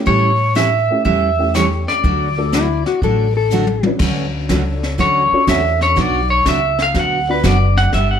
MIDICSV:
0, 0, Header, 1, 8, 480
1, 0, Start_track
1, 0, Key_signature, 2, "major"
1, 0, Tempo, 490597
1, 76, Time_signature, 4, 2, 24, 8
1, 8019, End_track
2, 0, Start_track
2, 0, Title_t, "Pedal steel guitar"
2, 0, Program_c, 0, 26
2, 67, Note_on_c, 0, 73, 94
2, 519, Note_off_c, 0, 73, 0
2, 551, Note_on_c, 0, 76, 99
2, 1018, Note_off_c, 0, 76, 0
2, 1029, Note_on_c, 0, 76, 103
2, 1517, Note_off_c, 0, 76, 0
2, 1521, Note_on_c, 0, 73, 80
2, 1609, Note_off_c, 0, 73, 0
2, 1843, Note_on_c, 0, 74, 90
2, 3402, Note_off_c, 0, 74, 0
2, 4897, Note_on_c, 0, 73, 80
2, 5336, Note_off_c, 0, 73, 0
2, 5373, Note_on_c, 0, 76, 88
2, 5682, Note_off_c, 0, 76, 0
2, 5700, Note_on_c, 0, 73, 88
2, 5844, Note_off_c, 0, 73, 0
2, 5878, Note_on_c, 0, 74, 89
2, 6163, Note_off_c, 0, 74, 0
2, 6167, Note_on_c, 0, 73, 84
2, 6317, Note_off_c, 0, 73, 0
2, 6346, Note_on_c, 0, 76, 86
2, 6648, Note_off_c, 0, 76, 0
2, 6677, Note_on_c, 0, 77, 95
2, 6812, Note_off_c, 0, 77, 0
2, 6843, Note_on_c, 0, 78, 94
2, 7136, Note_off_c, 0, 78, 0
2, 7149, Note_on_c, 0, 71, 49
2, 7288, Note_off_c, 0, 71, 0
2, 7311, Note_on_c, 0, 74, 73
2, 7608, Note_on_c, 0, 78, 117
2, 7610, Note_off_c, 0, 74, 0
2, 7757, Note_off_c, 0, 78, 0
2, 7768, Note_on_c, 0, 76, 77
2, 7918, Note_off_c, 0, 76, 0
2, 7936, Note_on_c, 0, 78, 87
2, 8019, Note_off_c, 0, 78, 0
2, 8019, End_track
3, 0, Start_track
3, 0, Title_t, "Electric slide guitar"
3, 0, Program_c, 1, 29
3, 2496, Note_on_c, 1, 64, 87
3, 2800, Note_off_c, 1, 64, 0
3, 2810, Note_on_c, 1, 66, 82
3, 2961, Note_off_c, 1, 66, 0
3, 2975, Note_on_c, 1, 69, 83
3, 3279, Note_off_c, 1, 69, 0
3, 3296, Note_on_c, 1, 69, 84
3, 3835, Note_off_c, 1, 69, 0
3, 8019, End_track
4, 0, Start_track
4, 0, Title_t, "Honky-tonk piano"
4, 0, Program_c, 2, 3
4, 886, Note_on_c, 2, 57, 64
4, 889, Note_on_c, 2, 61, 59
4, 891, Note_on_c, 2, 64, 61
4, 898, Note_on_c, 2, 67, 68
4, 1025, Note_off_c, 2, 57, 0
4, 1026, Note_off_c, 2, 61, 0
4, 1028, Note_off_c, 2, 64, 0
4, 1031, Note_off_c, 2, 67, 0
4, 1359, Note_on_c, 2, 61, 54
4, 1361, Note_on_c, 2, 57, 63
4, 1368, Note_on_c, 2, 64, 57
4, 1372, Note_on_c, 2, 67, 77
4, 1967, Note_off_c, 2, 61, 0
4, 1968, Note_off_c, 2, 57, 0
4, 1972, Note_off_c, 2, 64, 0
4, 1973, Note_off_c, 2, 67, 0
4, 2325, Note_on_c, 2, 57, 61
4, 2331, Note_on_c, 2, 62, 64
4, 2331, Note_on_c, 2, 66, 64
4, 2333, Note_on_c, 2, 69, 77
4, 2466, Note_off_c, 2, 57, 0
4, 2469, Note_off_c, 2, 62, 0
4, 2469, Note_off_c, 2, 66, 0
4, 2469, Note_off_c, 2, 69, 0
4, 3769, Note_on_c, 2, 61, 54
4, 3778, Note_on_c, 2, 62, 50
4, 3780, Note_on_c, 2, 66, 52
4, 3781, Note_on_c, 2, 71, 61
4, 4372, Note_off_c, 2, 61, 0
4, 4377, Note_off_c, 2, 62, 0
4, 4378, Note_off_c, 2, 66, 0
4, 4378, Note_off_c, 2, 71, 0
4, 4405, Note_on_c, 2, 62, 55
4, 4407, Note_on_c, 2, 61, 59
4, 4412, Note_on_c, 2, 66, 55
4, 4412, Note_on_c, 2, 69, 52
4, 4417, Note_on_c, 2, 73, 66
4, 5143, Note_off_c, 2, 62, 0
4, 5144, Note_off_c, 2, 61, 0
4, 5146, Note_off_c, 2, 66, 0
4, 5146, Note_off_c, 2, 69, 0
4, 5149, Note_off_c, 2, 73, 0
4, 5214, Note_on_c, 2, 61, 69
4, 5216, Note_on_c, 2, 62, 62
4, 5221, Note_on_c, 2, 66, 67
4, 5223, Note_on_c, 2, 69, 63
4, 5225, Note_on_c, 2, 73, 68
4, 5814, Note_off_c, 2, 61, 0
4, 5815, Note_off_c, 2, 62, 0
4, 5818, Note_off_c, 2, 66, 0
4, 5819, Note_off_c, 2, 69, 0
4, 5820, Note_off_c, 2, 73, 0
4, 7127, Note_on_c, 2, 59, 61
4, 7129, Note_on_c, 2, 62, 64
4, 7134, Note_on_c, 2, 66, 59
4, 7135, Note_on_c, 2, 71, 60
4, 7143, Note_on_c, 2, 74, 74
4, 7729, Note_off_c, 2, 59, 0
4, 7730, Note_off_c, 2, 62, 0
4, 7733, Note_off_c, 2, 66, 0
4, 7733, Note_off_c, 2, 71, 0
4, 7738, Note_off_c, 2, 74, 0
4, 8019, End_track
5, 0, Start_track
5, 0, Title_t, "Steel-string acoustic guitar"
5, 0, Program_c, 3, 25
5, 56, Note_on_c, 3, 52, 55
5, 57, Note_on_c, 3, 55, 60
5, 62, Note_on_c, 3, 61, 67
5, 65, Note_on_c, 3, 64, 67
5, 67, Note_on_c, 3, 69, 68
5, 291, Note_off_c, 3, 52, 0
5, 291, Note_off_c, 3, 55, 0
5, 294, Note_off_c, 3, 61, 0
5, 295, Note_off_c, 3, 64, 0
5, 296, Note_off_c, 3, 69, 0
5, 539, Note_on_c, 3, 52, 68
5, 541, Note_on_c, 3, 55, 77
5, 542, Note_on_c, 3, 64, 74
5, 543, Note_on_c, 3, 61, 74
5, 549, Note_on_c, 3, 69, 71
5, 667, Note_off_c, 3, 52, 0
5, 668, Note_off_c, 3, 55, 0
5, 669, Note_off_c, 3, 61, 0
5, 669, Note_off_c, 3, 64, 0
5, 672, Note_off_c, 3, 69, 0
5, 1025, Note_on_c, 3, 52, 58
5, 1027, Note_on_c, 3, 55, 58
5, 1027, Note_on_c, 3, 61, 57
5, 1031, Note_on_c, 3, 64, 57
5, 1034, Note_on_c, 3, 69, 67
5, 1256, Note_off_c, 3, 52, 0
5, 1257, Note_off_c, 3, 55, 0
5, 1258, Note_off_c, 3, 61, 0
5, 1259, Note_off_c, 3, 64, 0
5, 1261, Note_off_c, 3, 69, 0
5, 1508, Note_on_c, 3, 52, 68
5, 1513, Note_on_c, 3, 61, 74
5, 1514, Note_on_c, 3, 55, 73
5, 1517, Note_on_c, 3, 64, 76
5, 1523, Note_on_c, 3, 69, 75
5, 1633, Note_off_c, 3, 52, 0
5, 1635, Note_off_c, 3, 61, 0
5, 1636, Note_off_c, 3, 55, 0
5, 1637, Note_off_c, 3, 64, 0
5, 1640, Note_off_c, 3, 69, 0
5, 1997, Note_on_c, 3, 50, 53
5, 1998, Note_on_c, 3, 54, 61
5, 2001, Note_on_c, 3, 57, 64
5, 2005, Note_on_c, 3, 62, 59
5, 2007, Note_on_c, 3, 66, 65
5, 2223, Note_off_c, 3, 50, 0
5, 2224, Note_off_c, 3, 54, 0
5, 2225, Note_off_c, 3, 57, 0
5, 2228, Note_off_c, 3, 62, 0
5, 2229, Note_off_c, 3, 66, 0
5, 2470, Note_on_c, 3, 50, 62
5, 2477, Note_on_c, 3, 54, 63
5, 2484, Note_on_c, 3, 57, 78
5, 2486, Note_on_c, 3, 62, 75
5, 2491, Note_on_c, 3, 66, 73
5, 2595, Note_off_c, 3, 50, 0
5, 2598, Note_off_c, 3, 54, 0
5, 2601, Note_off_c, 3, 57, 0
5, 2602, Note_off_c, 3, 62, 0
5, 2605, Note_off_c, 3, 66, 0
5, 2967, Note_on_c, 3, 50, 60
5, 2967, Note_on_c, 3, 54, 55
5, 2967, Note_on_c, 3, 57, 58
5, 2973, Note_on_c, 3, 62, 61
5, 2976, Note_on_c, 3, 66, 62
5, 3189, Note_off_c, 3, 50, 0
5, 3189, Note_off_c, 3, 54, 0
5, 3189, Note_off_c, 3, 57, 0
5, 3192, Note_off_c, 3, 62, 0
5, 3193, Note_off_c, 3, 66, 0
5, 3444, Note_on_c, 3, 50, 68
5, 3450, Note_on_c, 3, 57, 83
5, 3451, Note_on_c, 3, 62, 81
5, 3453, Note_on_c, 3, 54, 72
5, 3460, Note_on_c, 3, 66, 77
5, 3562, Note_off_c, 3, 50, 0
5, 3565, Note_off_c, 3, 57, 0
5, 3565, Note_off_c, 3, 62, 0
5, 3567, Note_off_c, 3, 54, 0
5, 3570, Note_off_c, 3, 66, 0
5, 3929, Note_on_c, 3, 50, 59
5, 3934, Note_on_c, 3, 54, 65
5, 3939, Note_on_c, 3, 57, 56
5, 3939, Note_on_c, 3, 61, 68
5, 3943, Note_on_c, 3, 66, 60
5, 4150, Note_off_c, 3, 50, 0
5, 4152, Note_off_c, 3, 54, 0
5, 4155, Note_off_c, 3, 57, 0
5, 4155, Note_off_c, 3, 61, 0
5, 4157, Note_off_c, 3, 66, 0
5, 4397, Note_on_c, 3, 50, 71
5, 4397, Note_on_c, 3, 54, 71
5, 4400, Note_on_c, 3, 57, 78
5, 4403, Note_on_c, 3, 61, 76
5, 4408, Note_on_c, 3, 66, 72
5, 4518, Note_off_c, 3, 54, 0
5, 4519, Note_off_c, 3, 50, 0
5, 4520, Note_off_c, 3, 57, 0
5, 4522, Note_off_c, 3, 61, 0
5, 4524, Note_off_c, 3, 66, 0
5, 4872, Note_on_c, 3, 54, 58
5, 4876, Note_on_c, 3, 50, 56
5, 4878, Note_on_c, 3, 57, 63
5, 4882, Note_on_c, 3, 61, 61
5, 4884, Note_on_c, 3, 66, 58
5, 5101, Note_off_c, 3, 54, 0
5, 5103, Note_off_c, 3, 50, 0
5, 5104, Note_off_c, 3, 57, 0
5, 5106, Note_off_c, 3, 61, 0
5, 5107, Note_off_c, 3, 66, 0
5, 5355, Note_on_c, 3, 50, 75
5, 5357, Note_on_c, 3, 54, 77
5, 5357, Note_on_c, 3, 57, 68
5, 5363, Note_on_c, 3, 61, 74
5, 5367, Note_on_c, 3, 66, 84
5, 5477, Note_off_c, 3, 50, 0
5, 5478, Note_off_c, 3, 54, 0
5, 5478, Note_off_c, 3, 57, 0
5, 5481, Note_off_c, 3, 61, 0
5, 5483, Note_off_c, 3, 66, 0
5, 5830, Note_on_c, 3, 47, 62
5, 5836, Note_on_c, 3, 54, 65
5, 5836, Note_on_c, 3, 59, 63
5, 5843, Note_on_c, 3, 62, 58
5, 5843, Note_on_c, 3, 66, 67
5, 6059, Note_off_c, 3, 47, 0
5, 6062, Note_off_c, 3, 54, 0
5, 6062, Note_off_c, 3, 59, 0
5, 6066, Note_off_c, 3, 62, 0
5, 6066, Note_off_c, 3, 66, 0
5, 6322, Note_on_c, 3, 47, 71
5, 6329, Note_on_c, 3, 54, 78
5, 6330, Note_on_c, 3, 59, 75
5, 6331, Note_on_c, 3, 62, 84
5, 6337, Note_on_c, 3, 66, 81
5, 6440, Note_off_c, 3, 47, 0
5, 6443, Note_off_c, 3, 54, 0
5, 6444, Note_off_c, 3, 59, 0
5, 6445, Note_off_c, 3, 62, 0
5, 6447, Note_off_c, 3, 66, 0
5, 6795, Note_on_c, 3, 47, 56
5, 6796, Note_on_c, 3, 59, 69
5, 6799, Note_on_c, 3, 62, 54
5, 6800, Note_on_c, 3, 54, 59
5, 6805, Note_on_c, 3, 66, 64
5, 7021, Note_off_c, 3, 47, 0
5, 7022, Note_off_c, 3, 59, 0
5, 7024, Note_off_c, 3, 54, 0
5, 7024, Note_off_c, 3, 62, 0
5, 7027, Note_off_c, 3, 66, 0
5, 7274, Note_on_c, 3, 47, 76
5, 7281, Note_on_c, 3, 54, 75
5, 7281, Note_on_c, 3, 59, 77
5, 7286, Note_on_c, 3, 62, 82
5, 7287, Note_on_c, 3, 66, 85
5, 7395, Note_off_c, 3, 47, 0
5, 7399, Note_off_c, 3, 54, 0
5, 7399, Note_off_c, 3, 59, 0
5, 7401, Note_off_c, 3, 62, 0
5, 7402, Note_off_c, 3, 66, 0
5, 7765, Note_on_c, 3, 50, 63
5, 7770, Note_on_c, 3, 55, 62
5, 7770, Note_on_c, 3, 59, 63
5, 7773, Note_on_c, 3, 62, 66
5, 7776, Note_on_c, 3, 67, 62
5, 7986, Note_off_c, 3, 50, 0
5, 7988, Note_off_c, 3, 55, 0
5, 7988, Note_off_c, 3, 59, 0
5, 7990, Note_off_c, 3, 62, 0
5, 7991, Note_off_c, 3, 67, 0
5, 8019, End_track
6, 0, Start_track
6, 0, Title_t, "Upright bass"
6, 0, Program_c, 4, 32
6, 66, Note_on_c, 4, 45, 88
6, 840, Note_off_c, 4, 45, 0
6, 1029, Note_on_c, 4, 40, 85
6, 1803, Note_off_c, 4, 40, 0
6, 1991, Note_on_c, 4, 38, 93
6, 2764, Note_off_c, 4, 38, 0
6, 2953, Note_on_c, 4, 33, 80
6, 3725, Note_off_c, 4, 33, 0
6, 3915, Note_on_c, 4, 38, 83
6, 4384, Note_off_c, 4, 38, 0
6, 4398, Note_on_c, 4, 37, 85
6, 4866, Note_off_c, 4, 37, 0
6, 4876, Note_on_c, 4, 38, 76
6, 5180, Note_off_c, 4, 38, 0
6, 5355, Note_on_c, 4, 40, 102
6, 5824, Note_off_c, 4, 40, 0
6, 5839, Note_on_c, 4, 35, 82
6, 6305, Note_off_c, 4, 35, 0
6, 6315, Note_on_c, 4, 37, 83
6, 6783, Note_off_c, 4, 37, 0
6, 6795, Note_on_c, 4, 38, 76
6, 7263, Note_off_c, 4, 38, 0
6, 7276, Note_on_c, 4, 30, 107
6, 7743, Note_off_c, 4, 30, 0
6, 7754, Note_on_c, 4, 31, 84
6, 8019, Note_off_c, 4, 31, 0
6, 8019, End_track
7, 0, Start_track
7, 0, Title_t, "Muted upright bass strokes"
7, 5205, Note_on_c, 9, 29, 38
7, 5303, Note_off_c, 9, 29, 0
7, 8019, End_track
8, 0, Start_track
8, 0, Title_t, "Drums"
8, 68, Note_on_c, 9, 25, 54
8, 68, Note_on_c, 9, 36, 30
8, 166, Note_off_c, 9, 36, 0
8, 551, Note_on_c, 9, 38, 65
8, 551, Note_on_c, 9, 44, 61
8, 648, Note_off_c, 9, 38, 0
8, 648, Note_off_c, 9, 44, 0
8, 1030, Note_off_c, 9, 25, 0
8, 1030, Note_on_c, 9, 25, 48
8, 1032, Note_on_c, 9, 36, 29
8, 1130, Note_off_c, 9, 36, 0
8, 1514, Note_on_c, 9, 38, 66
8, 1514, Note_on_c, 9, 44, 64
8, 1612, Note_off_c, 9, 38, 0
8, 1612, Note_off_c, 9, 44, 0
8, 1839, Note_on_c, 9, 38, 36
8, 1937, Note_off_c, 9, 38, 0
8, 1991, Note_off_c, 9, 25, 0
8, 1991, Note_on_c, 9, 25, 45
8, 1994, Note_on_c, 9, 36, 33
8, 2092, Note_off_c, 9, 36, 0
8, 2474, Note_on_c, 9, 38, 65
8, 2474, Note_on_c, 9, 44, 56
8, 2572, Note_off_c, 9, 38, 0
8, 2572, Note_off_c, 9, 44, 0
8, 2798, Note_on_c, 9, 38, 41
8, 2896, Note_off_c, 9, 38, 0
8, 2950, Note_off_c, 9, 25, 0
8, 2950, Note_on_c, 9, 25, 46
8, 2954, Note_on_c, 9, 36, 31
8, 3052, Note_off_c, 9, 36, 0
8, 3429, Note_on_c, 9, 44, 65
8, 3527, Note_off_c, 9, 44, 0
8, 3589, Note_on_c, 9, 48, 54
8, 3687, Note_off_c, 9, 48, 0
8, 3748, Note_on_c, 9, 48, 75
8, 3846, Note_off_c, 9, 48, 0
8, 3905, Note_off_c, 9, 25, 0
8, 3905, Note_on_c, 9, 25, 49
8, 3905, Note_on_c, 9, 38, 47
8, 3905, Note_on_c, 9, 49, 74
8, 3914, Note_on_c, 9, 36, 66
8, 4003, Note_off_c, 9, 38, 0
8, 4003, Note_off_c, 9, 49, 0
8, 4012, Note_off_c, 9, 36, 0
8, 4394, Note_on_c, 9, 38, 60
8, 4394, Note_on_c, 9, 44, 50
8, 4397, Note_on_c, 9, 36, 18
8, 4491, Note_off_c, 9, 38, 0
8, 4491, Note_off_c, 9, 44, 0
8, 4495, Note_off_c, 9, 36, 0
8, 4727, Note_on_c, 9, 38, 36
8, 4824, Note_off_c, 9, 38, 0
8, 4879, Note_on_c, 9, 36, 21
8, 4880, Note_off_c, 9, 25, 0
8, 4880, Note_on_c, 9, 25, 44
8, 4880, Note_on_c, 9, 38, 41
8, 4977, Note_off_c, 9, 36, 0
8, 4978, Note_off_c, 9, 38, 0
8, 5359, Note_on_c, 9, 36, 25
8, 5360, Note_on_c, 9, 38, 60
8, 5360, Note_on_c, 9, 44, 55
8, 5457, Note_off_c, 9, 36, 0
8, 5458, Note_off_c, 9, 38, 0
8, 5458, Note_off_c, 9, 44, 0
8, 5684, Note_on_c, 9, 38, 36
8, 5782, Note_off_c, 9, 38, 0
8, 5839, Note_on_c, 9, 36, 24
8, 5840, Note_off_c, 9, 25, 0
8, 5840, Note_on_c, 9, 25, 50
8, 5840, Note_on_c, 9, 38, 41
8, 5937, Note_off_c, 9, 36, 0
8, 5938, Note_off_c, 9, 38, 0
8, 6316, Note_on_c, 9, 38, 66
8, 6316, Note_on_c, 9, 44, 55
8, 6318, Note_on_c, 9, 36, 21
8, 6414, Note_off_c, 9, 38, 0
8, 6414, Note_off_c, 9, 44, 0
8, 6416, Note_off_c, 9, 36, 0
8, 6640, Note_on_c, 9, 38, 42
8, 6738, Note_off_c, 9, 38, 0
8, 6794, Note_off_c, 9, 25, 0
8, 6794, Note_on_c, 9, 25, 49
8, 6794, Note_on_c, 9, 38, 39
8, 6796, Note_on_c, 9, 36, 24
8, 6892, Note_off_c, 9, 38, 0
8, 6894, Note_off_c, 9, 36, 0
8, 7276, Note_on_c, 9, 38, 63
8, 7276, Note_on_c, 9, 44, 57
8, 7277, Note_on_c, 9, 36, 22
8, 7374, Note_off_c, 9, 38, 0
8, 7374, Note_off_c, 9, 44, 0
8, 7375, Note_off_c, 9, 36, 0
8, 7601, Note_on_c, 9, 38, 39
8, 7699, Note_off_c, 9, 38, 0
8, 7755, Note_off_c, 9, 25, 0
8, 7755, Note_on_c, 9, 25, 49
8, 7755, Note_on_c, 9, 36, 22
8, 7755, Note_on_c, 9, 38, 44
8, 7852, Note_off_c, 9, 36, 0
8, 7853, Note_off_c, 9, 38, 0
8, 8019, Note_off_c, 9, 25, 0
8, 8019, End_track
0, 0, End_of_file